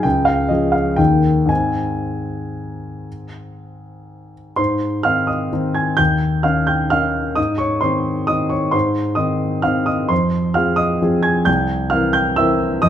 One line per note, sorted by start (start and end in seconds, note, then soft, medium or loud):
0.03 0.48 C#2 medium
0.03 0.26 G5 medium
0.25 0.49 F5 medium
0.49 0.95 F3 soft
0.49 0.95 C#4 soft
0.49 0.95 G#4 soft
0.49 0.73 D#5 medium
0.72 0.97 F5 medium
0.96 1.48 D#2 medium
0.96 1.45 D#3 soft
0.96 1.46 A#3 soft
0.96 1.46 D#4 soft
0.96 1.48 G5 medium
1.45 4.52 G#2 soft
1.45 4.53 D#3 soft
1.45 4.53 C4 soft
1.45 4.54 D#4 soft
1.45 4.34 G#5 medium
4.56 5.04 G#2 soft
4.56 5.02 C5 medium
4.56 5.05 C6 medium
5.03 5.49 D#3 soft
5.03 5.49 C4 soft
5.03 5.49 D#4 soft
5.03 5.27 F5 medium
5.03 5.28 F6 medium
5.27 5.73 D#5 soft
5.27 5.75 D#6 medium
5.53 5.95 D#3 soft
5.53 5.95 C4 soft
5.53 5.95 D#4 soft
5.74 5.97 G#5 soft
5.74 5.98 G#6 medium
5.97 6.43 D#2 medium
5.97 6.41 G5 medium
5.97 6.43 G6 medium
6.43 6.87 D#3 soft
6.43 6.88 C#4 soft
6.43 6.88 D#4 soft
6.43 6.66 F5 medium
6.43 6.67 F6 medium
6.67 6.90 G5 medium
6.67 6.91 G6 medium
6.90 7.34 D#3 soft
6.90 7.34 C#4 soft
6.90 7.34 D#4 soft
6.90 7.34 F5 medium
6.90 7.37 F6 medium
7.36 7.81 G#2 soft
7.36 7.58 D#5 medium
7.36 7.59 D#6 medium
7.58 7.80 C#5 soft
7.58 7.81 C#6 medium
7.81 8.25 D#3 soft
7.81 8.25 C4 soft
7.81 8.25 D#4 soft
7.81 8.25 C5 soft
7.81 8.28 C6 medium
8.27 8.70 D#3 soft
8.27 8.70 C4 soft
8.27 8.70 D#4 soft
8.27 8.50 D#5 medium
8.27 8.51 D#6 medium
8.50 8.72 C#5 soft
8.50 8.73 C#6 medium
8.71 9.16 G#2 medium
8.71 9.15 C5 soft
8.71 9.17 C6 medium
9.15 9.60 D#3 soft
9.15 9.60 C4 soft
9.15 9.61 D#4 soft
9.15 9.61 D#5 medium
9.15 9.63 D#6 medium
9.62 10.06 D#3 soft
9.62 10.06 C4 soft
9.62 10.07 D#4 soft
9.62 9.86 F5 medium
9.62 9.87 F6 medium
9.86 10.09 D#5 soft
9.86 10.09 D#6 medium
10.09 10.54 F2 medium
10.09 10.52 C5 soft
10.09 10.54 C6 medium
10.54 10.98 F3 soft
10.54 10.98 C4 soft
10.54 10.98 G#4 soft
10.54 10.77 F5 medium
10.54 10.78 F6 medium
10.76 11.21 D#5 medium
10.76 11.24 D#6 medium
11.02 11.43 F3 soft
11.02 11.43 C4 soft
11.02 11.43 G#4 soft
11.23 11.45 G#5 soft
11.23 11.46 G#6 medium
11.45 11.90 C2 medium
11.45 11.88 G5 medium
11.45 11.91 G6 medium
11.90 12.34 E3 soft
11.90 12.34 C4 soft
11.90 12.34 A#4 soft
11.90 12.13 F5 medium
11.90 12.14 F6 medium
12.13 12.36 G5 medium
12.13 12.37 G6 medium
12.36 12.79 E3 soft
12.36 12.79 C4 soft
12.36 12.80 A#4 medium
12.36 12.80 E5 medium
12.36 12.82 E6 medium
12.82 12.89 F2 medium
12.82 12.89 D#5 medium
12.82 12.89 D#6 medium